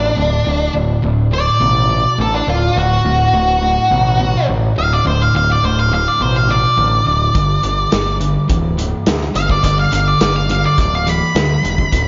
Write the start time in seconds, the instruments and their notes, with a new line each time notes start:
Already playing: picked electric bass A1, distorted electric guitar D2 A2, lead electric guitar D4
0.16 picked electric bass D1, distorted electric guitar D2 A2
0.45 picked electric bass D1, distorted electric guitar D2 A2
0.74 picked electric bass D1, distorted electric guitar D2 A2
1.02 picked electric bass D1, distorted electric guitar D2 A2
1.31 distorted electric guitar D2 A2, lead electric guitar D5
1.60 picked electric bass A1, distorted electric guitar D2 B2
1.89 distorted electric guitar D2 B2
2.18 picked electric bass A1, distorted electric guitar D2 A2, lead electric guitar A4
2.34 lead electric guitar D4
2.46 picked electric bass D1, distorted electric guitar D2 A2, lead electric guitar F4
2.76 picked electric bass D1, distorted electric guitar D2 A2, lead electric guitar F#4
3.04 picked electric bass D1, distorted electric guitar D2 A2
3.33 picked electric bass D1, distorted electric guitar D2 A2
3.62 distorted electric guitar D2 A2
3.91 picked electric bass A1, distorted electric guitar D2 B2
4.19 distorted electric guitar D2 B2
4.47 picked electric bass A1, distorted electric guitar D2 A2
4.76 picked electric bass D1, distorted electric guitar D2 A2, lead electric guitar F5
4.93 lead electric guitar D5
5.05 picked electric bass D1, distorted electric guitar D2 A2, lead electric guitar C5
5.22 lead electric guitar F5
5.34 picked electric bass D1, distorted electric guitar D2 A2, lead electric guitar F5
5.52 lead electric guitar D5
5.63 picked electric bass D1, distorted electric guitar D2 A2, lead electric guitar C5
5.79 lead electric guitar F5
5.92 distorted electric guitar D2 A2, lead electric guitar F5
6.08 lead electric guitar D5
6.20 picked electric bass A1, distorted electric guitar D2 B2, lead electric guitar C5
6.36 lead electric guitar F5
6.48 distorted electric guitar D2 B2, lead electric guitar D5
6.77 picked electric bass A1, distorted electric guitar D2 A2
7.05 picked electric bass D1, distorted electric guitar D2 A2
7.34 picked electric bass G1, distorted electric guitar G2 D3, kick, closed hi-hat
7.62 picked electric bass G1, distorted electric guitar G2 D3, closed hi-hat
7.91 picked electric bass G1, distorted electric guitar G2 D3, snare, closed hi-hat
8.20 distorted electric guitar G2 D3, closed hi-hat
8.48 picked electric bass D1, distorted electric guitar G2 E3, kick, closed hi-hat
8.77 distorted electric guitar G2 E3, closed hi-hat
9.06 picked electric bass D2, distorted electric guitar G2 D3, snare, closed hi-hat
9.21 snare
9.35 picked electric bass G1, distorted electric guitar G2 D3, lead electric guitar F5, closed hi-hat
9.50 lead electric guitar D5, kick
9.63 picked electric bass G1, distorted electric guitar G2 D3, lead electric guitar D5, kick, closed hi-hat
9.79 lead electric guitar F5
9.92 picked electric bass G1, distorted electric guitar G2 D3, lead electric guitar F5, closed hi-hat
10.08 lead electric guitar D5
10.21 picked electric bass G1, distorted electric guitar G2 D3, lead electric guitar D5, snare, closed hi-hat
10.36 lead electric guitar F5
10.49 distorted electric guitar G2 D3, lead electric guitar F5, closed hi-hat
10.66 lead electric guitar D5
10.78 picked electric bass D1, distorted electric guitar G2 E3, lead electric guitar D5, kick, closed hi-hat
10.95 lead electric guitar F5
11.06 distorted electric guitar G2 E3, lead electric guitar B5, closed hi-hat
11.35 picked electric bass D2, distorted electric guitar G2 D3, snare, closed hi-hat
11.63 picked electric bass E1, distorted electric guitar G2 D3, closed hi-hat
11.78 kick
11.92 picked electric bass D1, distorted electric guitar D2 A2, kick, closed hi-hat